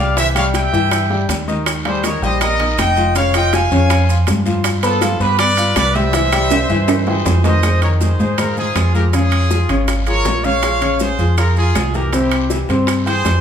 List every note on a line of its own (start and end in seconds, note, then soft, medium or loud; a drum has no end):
0.00 0.67 C2 loud
0.00 0.14 G3 medium
0.00 0.14 G4 medium
0.00 0.18 D5 medium
0.00 0.18 F5 medium
0.00 0.14 G5 medium
0.17 0.32 E3 medium
0.17 0.33 E4 medium
0.17 0.27 C5 medium
0.17 0.33 E5 medium
0.17 0.26 E5 loud
0.17 high bongo medium
0.17 high conga soft
0.17 high timbale medium
0.17 long guiro medium
0.17 maracas medium
0.35 0.66 G3 medium
0.35 0.66 G4 medium
0.35 0.45 C#5 medium
0.35 0.45 F5 medium
0.35 0.66 G5 medium
0.35 high bongo soft
0.35 high conga soft
0.35 high timbale loud
0.35 claves medium
0.35 maracas medium
0.54 1.26 E5 medium
0.54 1.25 G5 loud
0.54 high bongo medium
0.54 high conga medium
0.54 high timbale medium
0.54 short guiro medium
0.54 maracas medium
0.73 1.25 G2 medium
0.73 1.04 E3 medium
0.73 1.04 E4 medium
0.73 1.04 E5 medium
0.73 high conga soft
0.73 short guiro medium
0.73 maracas soft
0.91 high bongo medium
0.91 high conga soft
0.91 high timbale loud
0.91 long guiro medium
0.91 claves medium
0.91 maracas medium
1.10 1.41 G3 medium
1.10 1.41 G4 medium
1.10 1.41 G5 medium
1.10 high bongo soft
1.10 high conga soft
1.29 2.16 D#2 medium
1.29 high bongo medium
1.29 low bongo medium
1.29 high conga medium
1.29 high timbale medium
1.29 short guiro medium
1.29 maracas medium
1.48 1.78 D#3 medium
1.48 1.79 D#4 medium
1.48 1.78 D#5 medium
1.48 high bongo soft
1.48 high conga medium
1.48 short guiro medium
1.48 maracas soft
1.66 high bongo medium
1.66 high timbale loud
1.66 long guiro medium
1.66 claves medium
1.66 maracas medium
1.85 2.00 G3 medium
1.85 2.01 G4 medium
1.85 2.03 G#4 medium
1.85 2.03 C5 medium
1.85 2.01 G5 medium
1.85 high conga soft
1.85 high timbale medium
2.03 2.19 D#3 medium
2.03 2.19 D#4 medium
2.03 2.22 A#4 medium
2.03 2.22 C#5 medium
2.03 2.20 D#5 medium
2.03 high bongo medium
2.03 high conga medium
2.03 high timbale medium
2.03 short guiro medium
2.03 maracas medium
2.22 2.74 A#1 loud
2.22 2.53 G3 medium
2.22 2.53 G4 medium
2.22 2.40 C5 medium
2.22 2.40 D#5 medium
2.22 2.53 G5 medium
2.22 short guiro medium
2.22 maracas soft
2.40 2.76 A#4 medium
2.40 2.76 D#5 medium
2.40 high bongo medium
2.40 high conga soft
2.40 low conga medium
2.40 high timbale loud
2.40 long guiro medium
2.40 claves medium
2.40 maracas medium
2.59 2.90 D#4 medium
2.59 2.90 D#5 medium
2.59 2.90 D#6 medium
2.59 high conga soft
2.59 low conga medium
2.59 high timbale medium
2.77 3.65 F1 medium
2.77 3.14 D#5 medium
2.77 3.13 G5 medium
2.77 high bongo medium
2.77 low bongo medium
2.77 high conga medium
2.77 high timbale medium
2.77 short guiro medium
2.77 claves medium
2.77 maracas medium
2.96 3.12 F3 medium
2.96 3.12 F4 medium
2.96 3.12 F5 medium
2.96 high conga medium
2.96 short guiro medium
2.96 maracas soft
3.15 3.31 C#3 medium
3.15 3.31 C#4 medium
3.15 3.31 C#5 medium
3.15 3.34 C#5 medium
3.15 3.33 F5 medium
3.15 high bongo medium
3.15 high timbale medium
3.15 long guiro medium
3.15 maracas medium
3.34 3.65 F3 medium
3.34 3.65 F4 medium
3.34 3.52 D#5 medium
3.34 3.65 F5 medium
3.34 3.52 G5 loud
3.34 high bongo soft
3.34 high conga soft
3.34 high timbale loud
3.34 claves medium
3.34 maracas medium
3.52 4.28 F5 medium
3.52 4.28 G#5 loud
3.52 high bongo medium
3.52 high conga medium
3.52 high timbale medium
3.52 short guiro medium
3.52 maracas medium
3.71 4.23 F2 loud
3.71 4.02 C#3 medium
3.71 4.02 C#4 medium
3.71 4.02 C#5 medium
3.71 high conga soft
3.71 short guiro medium
3.71 maracas soft
3.90 high bongo medium
3.90 high conga soft
3.90 high timbale loud
3.90 long guiro medium
3.90 claves medium
3.90 maracas medium
4.09 4.39 F3 medium
4.09 4.39 F4 medium
4.09 4.40 F5 medium
4.09 high bongo soft
4.09 high conga soft
4.09 maracas medium
4.27 5.15 G2 medium
4.27 high bongo medium
4.27 low bongo medium
4.27 high conga medium
4.27 high timbale medium
4.27 short guiro medium
4.27 maracas medium
4.45 4.76 F3 medium
4.45 4.76 F4 medium
4.45 4.77 F5 medium
4.45 high bongo soft
4.45 high conga medium
4.45 short guiro medium
4.45 maracas soft
4.64 high bongo medium
4.64 high conga soft
4.64 high timbale loud
4.64 long guiro medium
4.64 claves medium
4.64 maracas medium
4.83 4.98 B3 medium
4.83 5.18 F4 medium
4.83 5.18 A4 medium
4.83 4.99 B4 medium
4.83 4.99 B5 medium
4.83 high timbale medium
4.83 maracas medium
5.01 5.17 F3 medium
5.01 5.17 F4 medium
5.01 5.17 F5 medium
5.01 high bongo medium
5.01 high conga loud
5.01 high timbale medium
5.01 short guiro medium
5.01 maracas medium
5.20 5.72 G2 medium
5.20 5.51 B3 medium
5.20 5.39 G4 medium
5.20 5.38 B4 medium
5.20 5.51 B4 medium
5.20 5.51 B5 medium
5.20 short guiro medium
5.20 maracas soft
5.38 5.74 B4 medium
5.38 5.73 D5 loud
5.38 high bongo medium
5.38 high conga soft
5.38 low conga medium
5.38 high timbale loud
5.38 claves medium
5.38 maracas medium
5.57 5.88 F4 medium
5.57 5.88 F5 medium
5.57 5.89 F6 medium
5.57 high conga soft
5.57 high timbale medium
5.57 maracas medium
5.76 6.64 C2 medium
5.76 5.95 B4 medium
5.76 5.93 D5 medium
5.76 high bongo medium
5.76 low bongo medium
5.76 high conga loud
5.76 high timbale medium
5.76 short guiro medium
5.76 claves medium
5.76 maracas medium
5.94 6.10 G3 medium
5.94 6.11 G4 medium
5.94 7.07 C5 medium
5.94 7.25 E5 loud
5.94 6.11 G5 medium
5.94 high conga medium
5.94 short guiro medium
5.94 maracas soft
6.13 6.29 E3 medium
6.13 6.29 E4 medium
6.13 6.29 E5 medium
6.13 high bongo medium
6.13 high conga soft
6.13 high timbale medium
6.13 long guiro medium
6.13 maracas medium
6.32 6.63 G3 medium
6.32 6.63 G4 medium
6.32 6.63 G5 medium
6.32 high bongo soft
6.32 high timbale loud
6.32 claves medium
6.32 maracas medium
6.51 high bongo medium
6.51 high conga medium
6.51 high timbale medium
6.51 short guiro medium
6.51 maracas medium
6.69 7.22 G2 medium
6.69 7.01 E3 medium
6.69 7.01 E4 medium
6.69 7.01 E5 medium
6.69 high conga soft
6.69 short guiro medium
6.69 maracas soft
6.88 high bongo medium
6.88 high conga soft
6.88 high timbale loud
6.88 long guiro medium
6.88 claves medium
6.88 maracas medium
7.07 7.38 E3 medium
7.07 7.38 E4 medium
7.07 7.43 G#4 medium
7.07 7.42 C5 medium
7.07 7.38 G5 medium
7.07 high bongo soft
7.07 high conga soft
7.07 low timbale medium
7.25 8.13 F2 medium
7.25 high bongo medium
7.25 low bongo medium
7.25 high conga medium
7.25 low timbale medium
7.25 short guiro medium
7.25 maracas medium
7.44 7.60 D#3 medium
7.44 7.60 D#4 medium
7.44 7.80 C5 medium
7.44 7.80 D#5 medium
7.44 7.60 D#5 medium
7.44 high bongo soft
7.44 high conga medium
7.44 low timbale medium
7.44 short guiro medium
7.44 maracas soft
7.63 7.78 G#3 medium
7.63 7.79 G#4 medium
7.63 7.79 C5 medium
7.63 high bongo medium
7.63 high timbale medium
7.63 long guiro medium
7.63 claves medium
7.63 maracas medium
7.82 8.13 D#3 medium
7.82 8.13 D#4 medium
7.82 7.91 A#4 medium
7.82 7.90 C#5 medium
7.82 8.13 D#5 medium
7.82 high conga soft
7.82 high timbale medium
7.82 maracas soft
8.00 8.36 G#4 medium
8.00 8.36 C5 medium
8.00 high bongo medium
8.00 high conga medium
8.00 low timbale medium
8.00 short guiro medium
8.00 maracas medium
8.19 8.72 G#2 medium
8.19 8.35 G#3 medium
8.19 8.35 G#4 medium
8.19 8.35 C5 medium
8.19 high bongo soft
8.19 short guiro medium
8.19 maracas soft
8.38 8.54 G#3 medium
8.38 8.58 F4 medium
8.38 8.54 G#4 medium
8.38 8.57 A#4 medium
8.38 8.54 C5 medium
8.38 high bongo medium
8.38 high timbale medium
8.38 long guiro medium
8.38 claves medium
8.38 maracas medium
8.57 8.88 G#3 medium
8.57 8.93 F4 medium
8.57 8.88 G#4 medium
8.57 8.92 G#4 medium
8.57 8.88 C5 medium
8.57 high bongo soft
8.57 high conga soft
8.57 maracas soft
8.75 9.63 F2 medium
8.75 high bongo medium
8.75 low bongo medium
8.75 high conga medium
8.75 high timbale medium
8.75 low timbale medium
8.75 short guiro medium
8.75 claves medium
8.75 maracas medium
8.94 9.10 F3 medium
8.94 9.10 F4 medium
8.94 9.04 G4 medium
8.94 9.10 G#4 medium
8.94 9.03 A#4 medium
8.94 high bongo soft
8.94 high conga medium
8.94 short guiro medium
8.94 maracas soft
9.13 9.44 C#3 medium
9.13 9.44 C#4 medium
9.13 9.85 F4 medium
9.13 9.84 G#4 loud
9.13 9.44 C#5 medium
9.13 high bongo medium
9.13 high conga soft
9.13 high timbale medium
9.13 long guiro medium
9.13 maracas medium
9.32 high conga soft
9.32 high timbale medium
9.32 claves medium
9.32 maracas soft
9.50 9.66 F3 medium
9.50 9.66 F4 medium
9.50 9.66 G#4 medium
9.50 high bongo medium
9.50 high conga medium
9.50 low timbale medium
9.50 short guiro medium
9.50 maracas medium
9.69 10.21 G#1 medium
9.69 10.00 C#3 medium
9.69 10.00 C#4 medium
9.69 10.00 C#5 medium
9.69 high bongo soft
9.69 high conga soft
9.69 high timbale medium
9.69 short guiro medium
9.69 maracas soft
9.88 high bongo medium
9.88 high conga soft
9.88 high timbale medium
9.88 long guiro medium
9.88 claves medium
9.88 maracas medium
10.07 10.38 F3 medium
10.07 10.38 F4 medium
10.07 10.38 G#4 medium
10.07 10.43 A#4 medium
10.07 10.41 C#5 loud
10.07 high conga soft
10.07 high timbale medium
10.07 maracas soft
10.25 11.13 A#1 medium
10.25 high bongo medium
10.25 low bongo medium
10.25 high conga medium
10.25 high timbale medium
10.25 low timbale medium
10.25 short guiro medium
10.25 maracas medium
10.43 10.59 C#3 medium
10.43 10.59 C#4 medium
10.43 10.60 C#5 medium
10.43 11.01 C#5 medium
10.43 11.00 F5 loud
10.43 high bongo soft
10.43 high conga medium
10.43 short guiro medium
10.43 maracas soft
10.63 10.78 F3 medium
10.63 10.78 F4 medium
10.63 10.79 G#4 medium
10.63 high bongo medium
10.63 high conga soft
10.63 high timbale loud
10.63 long guiro medium
10.63 claves medium
10.63 maracas medium
10.81 11.12 C#3 medium
10.81 11.12 C#4 medium
10.81 11.12 C#5 medium
10.81 high conga soft
10.81 high timbale medium
10.81 maracas soft
11.00 11.36 G#4 medium
11.00 11.35 C5 medium
11.00 high bongo medium
11.00 high conga medium
11.00 low timbale medium
11.00 short guiro medium
11.00 maracas medium
11.19 11.71 F2 medium
11.19 11.34 F3 medium
11.19 11.34 F4 medium
11.19 11.35 G#4 medium
11.19 high bongo soft
11.19 high conga soft
11.19 short guiro medium
11.19 maracas soft
11.37 11.53 F3 medium
11.37 11.53 F4 medium
11.37 11.56 F4 medium
11.37 11.53 G#4 medium
11.37 11.55 A#4 medium
11.37 high bongo medium
11.37 high conga soft
11.37 high timbale medium
11.37 long guiro medium
11.37 claves medium
11.37 maracas medium
11.56 11.87 F3 medium
11.56 11.88 F4 medium
11.56 11.92 F4 medium
11.56 11.91 G#4 medium
11.56 11.88 G#4 medium
11.56 high bongo soft
11.56 high conga soft
11.56 maracas soft
11.75 12.63 C2 medium
11.75 high bongo medium
11.75 low bongo medium
11.75 high conga medium
11.75 high timbale medium
11.75 low timbale medium
11.75 short guiro medium
11.75 claves medium
11.75 maracas medium
11.94 12.10 E3 medium
11.94 12.10 E4 medium
11.94 12.10 G4 medium
11.94 12.11 G4 medium
11.94 12.13 A#4 medium
11.94 high bongo soft
11.94 high conga medium
11.94 short guiro medium
11.94 maracas soft
12.12 12.43 C3 medium
12.12 12.44 C4 medium
12.12 12.57 E4 medium
12.12 12.57 G4 medium
12.12 12.44 C5 medium
12.12 high bongo medium
12.12 high conga soft
12.12 high timbale medium
12.12 long guiro medium
12.12 maracas medium
12.31 high conga soft
12.31 high timbale medium
12.31 claves medium
12.31 maracas soft
12.50 12.66 E3 medium
12.50 12.66 E4 medium
12.50 12.66 G4 medium
12.50 high bongo medium
12.50 high conga medium
12.50 low timbale medium
12.50 short guiro medium
12.50 maracas medium
12.69 13.21 G2 medium
12.69 13.00 C3 medium
12.69 13.00 C4 medium
12.69 13.00 C5 medium
12.69 high bongo soft
12.69 high timbale medium
12.69 short guiro medium
12.69 maracas soft
12.87 high bongo medium
12.87 high timbale medium
12.87 long guiro medium
12.87 claves medium
12.87 maracas medium
13.06 13.37 E3 medium
13.06 13.37 E4 medium
13.06 13.41 G#4 medium
13.06 13.41 C5 loud
13.06 13.37 G5 medium
13.06 high conga soft
13.06 high timbale medium
13.06 maracas soft
13.25 13.41 F2 medium
13.25 high bongo medium
13.25 low bongo medium
13.25 high conga medium
13.25 high timbale medium
13.25 low timbale medium
13.25 short guiro medium
13.25 maracas medium